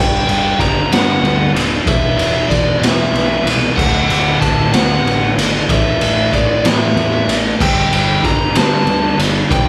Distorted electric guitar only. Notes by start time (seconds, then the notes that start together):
Already playing: G2 D3 G3
0.28 G2 D3 G3
0.60 G2 D3 G3
0.92 G2 D3 G3
1.21 G2 D3 G3
1.54 G2 D3 G3
1.85 E2 B2 E3
2.17 E2 B2 E3
2.49 E2 B2 E3
2.81 E2 B2 E3
3.13 E2 B2 E3
3.46 E2 B2 E3
3.78 D2 A2 D3
4.09 D2 A2 D3
4.41 D2 A2 D3
4.74 D2 A2 D3
5.05 D2 A2 D3
5.38 D2 A2 D3
5.68 A2 E3 A3
6.01 A2 E3 A3
6.34 A2 E3 A3
6.65 A2 E3 A3
6.97 A2 E3 A3
7.30 A2 E3 A3
7.61 G2 D3 G3
7.93 G2 D3 G3
8.23 G2 D3 G3
8.56 G2 D3 G3
8.89 G2 D3 G3
9.19 G2 D3 G3
9.50 E2 B2 E3